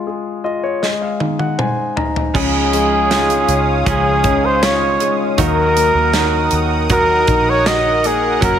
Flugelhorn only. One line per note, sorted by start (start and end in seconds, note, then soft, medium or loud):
2.37 3.83 G#4 medium
3.89 4.47 G#4 medium
4.45 4.66 C5 medium
4.65 5.20 C#5 medium
5.40 6.60 A#4 medium
6.92 7.51 A#4 loud
7.49 7.69 C#5 loud
7.68 8.08 D#5 medium
8.07 8.43 G#4 medium
8.43 8.59 A#4 loud